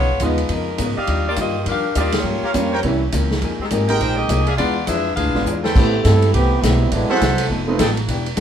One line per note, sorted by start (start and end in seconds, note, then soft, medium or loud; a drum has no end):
0.00 0.09 B1 medium
0.00 0.10 B3 medium
0.00 0.20 B3 medium
0.00 0.11 D#4 medium
0.00 0.21 F4 medium
0.00 0.20 G#4 medium
0.00 0.21 C#5 loud
0.10 0.19 G#1 medium
0.20 0.48 D#2 medium
0.20 0.39 C#3 medium
0.20 0.39 F3 medium
0.20 0.37 G#3 medium
0.20 0.40 B3 medium
0.20 0.37 B3 medium
0.20 0.40 D#4 medium
0.20 0.37 D#4 medium
0.20 0.38 F4 medium
0.20 kick soft
0.20 hi-hat pedal medium
0.20 ride medium
0.24 0.51 G#3 medium
0.24 0.52 D#4 medium
0.24 0.51 F4 medium
0.24 0.51 B4 medium
0.38 ride soft
0.48 0.77 F2 medium
0.48 0.68 C#3 soft
0.48 0.68 F3 soft
0.48 0.69 B3 soft
0.48 0.69 D#4 soft
0.48 kick soft
0.48 ride medium
0.54 0.98 G#3 medium
0.54 0.99 D#4 medium
0.54 0.98 F4 medium
0.54 0.99 A#4 medium
0.77 0.95 G#2 medium
0.77 0.97 C#3 medium
0.77 0.97 F3 medium
0.77 0.98 B3 medium
0.77 0.98 D#4 medium
0.77 kick soft
0.77 hi-hat pedal medium
0.77 ride medium
0.97 1.35 G4 medium
0.97 1.35 D5 medium
0.97 1.35 D#5 medium
0.97 1.35 F5 medium
0.97 muted upright bass stroke soft
1.07 1.36 D#2 medium
1.07 1.26 D#3 medium
1.07 1.27 G3 medium
1.07 1.27 D4 medium
1.07 1.28 F4 medium
1.07 kick soft
1.07 ride medium
1.29 1.38 A#3 medium
1.29 1.38 F4 medium
1.29 1.38 G4 medium
1.29 1.38 D5 medium
1.36 1.65 G2 medium
1.36 1.55 D#3 medium
1.36 1.56 G3 medium
1.36 1.56 D4 medium
1.36 1.57 F4 medium
1.36 kick soft
1.36 hi-hat pedal medium
1.36 ride medium
1.40 1.66 A#3 medium
1.40 1.66 F4 medium
1.40 1.66 G4 medium
1.40 1.66 D#5 medium
1.64 1.94 F2 medium
1.64 1.84 D#3 soft
1.64 1.85 G3 soft
1.64 1.85 D4 soft
1.64 1.86 F4 soft
1.64 kick soft
1.64 ride medium
1.69 1.95 D4 medium
1.69 1.95 G4 medium
1.69 1.95 A#4 medium
1.69 1.95 F5 medium
1.95 2.23 D#2 medium
1.95 2.14 D#3 medium
1.95 2.15 G3 medium
1.95 2.15 D4 medium
1.95 2.15 F4 medium
1.95 2.25 G4 medium
1.95 2.25 D5 medium
1.95 2.25 D#5 medium
1.95 2.25 F5 medium
1.95 kick soft
1.95 hi-hat pedal medium
1.95 ride medium
1.99 2.15 A#3 medium
1.99 2.15 G4 medium
1.99 2.15 D5 medium
2.12 snare medium
2.12 ride medium
2.17 3.28 A#3 medium
2.17 2.81 F4 medium
2.17 3.28 G4 medium
2.17 3.28 C#5 medium
2.23 2.42 G2 soft
2.23 2.40 G2 medium
2.23 2.43 F3 medium
2.23 2.44 A#3 soft
2.23 2.44 C#4 soft
2.42 2.51 G4 medium
2.42 2.51 A#4 medium
2.42 2.51 C#5 medium
2.42 2.51 F5 medium
2.42 muted upright bass stroke soft
2.53 2.82 F2 medium
2.53 2.72 G2 medium
2.53 2.73 F3 medium
2.53 2.70 G3 medium
2.53 2.73 A#3 medium
2.53 2.70 A#3 soft
2.53 2.70 C#4 medium
2.53 2.73 C#4 medium
2.53 2.71 F4 medium
2.53 kick soft
2.53 hi-hat pedal medium
2.53 ride medium
2.72 2.80 A#4 medium
2.72 2.80 C5 medium
2.72 2.80 C#5 medium
2.72 2.80 G5 medium
2.83 3.12 C2 medium
2.83 3.02 C3 medium
2.83 3.03 E3 medium
2.83 3.00 G3 medium
2.83 3.00 A#3 medium
2.83 3.03 A#3 soft
2.83 3.00 C#4 medium
2.83 3.00 E4 medium
2.83 kick soft
2.83 ride medium
2.87 3.04 C#4 medium
3.12 3.41 C#2 medium
3.12 3.31 C3 medium
3.12 3.32 E3 medium
3.12 3.32 A#3 medium
3.12 3.32 C#4 medium
3.12 kick soft
3.12 hi-hat pedal medium
3.12 ride medium
3.31 snare medium
3.42 3.58 F2 medium
3.42 3.60 F3 medium
3.42 3.61 A#3 medium
3.42 3.62 D#4 medium
3.42 3.62 G#4 medium
3.42 kick soft
3.42 ride soft
3.59 3.66 D#3 medium
3.59 3.67 G#3 medium
3.59 3.66 C4 medium
3.59 3.66 G4 medium
3.59 muted upright bass stroke soft
3.70 3.99 G#1 medium
3.70 3.89 F3 medium
3.70 3.99 G#3 medium
3.70 3.90 A#3 medium
3.70 3.90 D#4 medium
3.70 3.99 D#4 medium
3.70 3.99 G4 medium
3.70 3.91 G#4 medium
3.70 3.99 A#4 medium
3.70 kick soft
3.70 hi-hat pedal medium
3.70 ride medium
3.89 4.27 G#3 medium
3.89 4.27 A#3 soft
3.89 4.27 D#4 soft
3.89 4.27 G4 medium
3.89 4.27 A#4 medium
3.89 4.27 D#5 medium
3.89 4.27 G5 loud
3.89 ride soft
4.00 4.28 A#1 medium
4.00 4.19 F3 soft
4.00 4.18 G#3 medium
4.00 4.20 A#3 soft
4.00 4.18 D#4 medium
4.00 4.20 D#4 soft
4.00 4.16 G4 medium
4.00 4.21 G#4 soft
4.00 4.18 C5 medium
4.00 kick soft
4.00 ride medium
4.17 4.47 C4 medium
4.17 4.47 G4 medium
4.17 4.47 G#4 medium
4.17 4.47 D#5 medium
4.29 4.57 C2 medium
4.29 4.48 F3 medium
4.29 4.49 A#3 medium
4.29 4.49 D#4 medium
4.29 4.49 G#4 medium
4.29 kick soft
4.29 hi-hat pedal medium
4.29 ride medium
4.47 4.55 G#4 medium
4.47 4.55 D5 medium
4.47 4.55 E5 medium
4.47 4.55 F5 medium
4.47 ride soft
4.57 4.87 E2 medium
4.57 4.77 E3 soft
4.57 4.75 G#3 medium
4.57 4.78 G#3 soft
4.57 4.85 B3 medium
4.57 4.75 B3 soft
4.57 4.75 D4 medium
4.57 4.78 D4 soft
4.57 4.85 F4 medium
4.57 4.75 F4 medium
4.57 4.85 G#4 medium
4.57 4.85 D5 loud
4.57 kick soft
4.57 ride medium
4.61 4.79 F4 medium
4.87 5.16 F2 medium
4.87 5.06 E3 medium
4.87 5.07 G#3 medium
4.87 5.15 D4 medium
4.87 5.07 D4 medium
4.87 5.08 F4 medium
4.87 5.16 G#4 medium
4.87 5.15 B4 medium
4.87 5.17 E5 medium
4.87 kick soft
4.87 hi-hat pedal medium
4.87 ride medium
5.16 5.26 D2 medium
5.16 5.35 E3 soft
5.16 5.36 G#3 soft
5.16 5.60 D4 medium
5.16 5.37 D4 soft
5.16 5.37 F4 soft
5.16 5.60 G#4 medium
5.16 5.60 B4 medium
5.16 5.60 F5 medium
5.16 kick soft
5.16 ride medium
5.25 5.34 B1 medium
5.34 5.43 G#1 medium
5.34 5.45 G#3 medium
5.34 5.45 B3 medium
5.34 5.45 D4 medium
5.34 5.45 F4 medium
5.34 snare soft
5.44 5.73 E2 medium
5.44 5.64 E3 medium
5.44 5.65 G#3 medium
5.44 5.65 D4 medium
5.44 5.65 F4 medium
5.44 hi-hat pedal medium
5.64 6.02 A4 medium
5.64 6.02 B4 medium
5.64 6.02 C5 medium
5.64 6.02 G5 medium
5.64 snare medium
5.75 6.03 A2 medium
5.75 5.94 A3 medium
5.75 6.56 A3 medium
5.75 6.56 B3 medium
5.75 6.56 C4 medium
5.75 5.94 C4 medium
5.75 6.56 E4 medium
5.75 6.56 G4 medium
5.75 5.95 G4 medium
5.75 5.96 B4 medium
5.75 kick medium
5.75 crash medium
6.04 6.33 G2 loud
6.04 6.31 G3 medium
6.04 6.23 A3 medium
6.04 6.31 C4 medium
6.04 6.23 C4 medium
6.04 6.31 E4 medium
6.04 6.24 G4 medium
6.04 6.31 A4 loud
6.04 6.24 B4 medium
6.04 kick soft
6.04 snare medium
6.04 hi-hat pedal medium
6.04 ride medium
6.22 ride medium
6.33 6.62 C2 medium
6.33 6.60 E3 medium
6.33 6.52 A3 medium
6.33 6.61 B3 medium
6.33 6.61 C4 medium
6.33 6.52 C4 soft
6.33 6.61 G4 loud
6.33 6.53 G4 medium
6.33 6.54 B4 medium
6.33 kick soft
6.33 ride medium
6.62 6.91 B1 medium
6.62 6.92 G3 medium
6.62 6.81 A3 medium
6.62 6.92 B3 medium
6.62 6.82 C4 medium
6.62 6.92 C4 medium
6.62 6.92 E4 medium
6.62 6.82 G4 medium
6.62 6.82 B4 medium
6.62 kick soft
6.62 snare medium
6.62 hi-hat pedal medium
6.62 ride medium
6.91 7.08 A1 medium
6.91 7.09 E3 medium
6.91 7.10 F#3 medium
6.91 7.10 G#3 medium
6.91 7.10 B3 medium
6.91 7.11 C4 medium
6.91 7.10 D4 medium
6.91 7.11 E4 medium
6.91 7.12 A4 soft
6.91 kick soft
6.91 ride medium
7.09 7.50 E3 medium
7.09 7.50 F#3 medium
7.09 7.20 A3 medium
7.09 7.68 A3 medium
7.09 7.20 C4 medium
7.09 7.68 C4 medium
7.09 7.20 E4 medium
7.09 7.20 F#4 medium
7.09 7.20 G#4 medium
7.09 7.48 A4 loud
7.09 7.48 C5 medium
7.09 7.48 E5 medium
7.09 7.48 F#5 loud
7.09 muted upright bass stroke soft
7.21 7.49 C2 medium
7.21 7.40 F#3 medium
7.21 7.40 C4 medium
7.21 7.40 E4 medium
7.21 7.41 A4 medium
7.21 kick soft
7.21 snare medium
7.21 hi-hat pedal medium
7.21 ride medium
7.38 ride medium
7.49 7.78 F1 medium
7.49 7.68 F3 medium
7.49 7.69 B3 medium
7.49 7.70 D#4 medium
7.49 7.70 A4 medium
7.49 kick soft
7.68 7.78 A3 medium
7.68 7.78 C4 medium
7.68 7.78 D#4 medium
7.68 7.78 F4 medium
7.68 7.78 B4 medium
7.78 8.07 A1 medium
7.78 7.97 F3 medium
7.78 7.97 B3 medium
7.78 7.98 D#4 medium
7.78 7.91 A4 medium
7.78 7.98 A4 medium
7.78 7.91 B4 medium
7.78 7.91 D#5 medium
7.78 7.92 G5 medium
7.78 kick soft
7.78 snare medium
7.78 hi-hat pedal medium
7.78 ride medium
7.97 ride medium
8.07 8.37 E1 medium
8.07 8.27 E3 medium
8.07 8.27 B3 medium
8.07 8.28 D4 medium
8.07 8.28 G4 medium
8.07 kick soft
8.07 ride medium
8.26 ride soft
8.36 8.40 E3 medium
8.36 hi-hat pedal medium
8.36 ride medium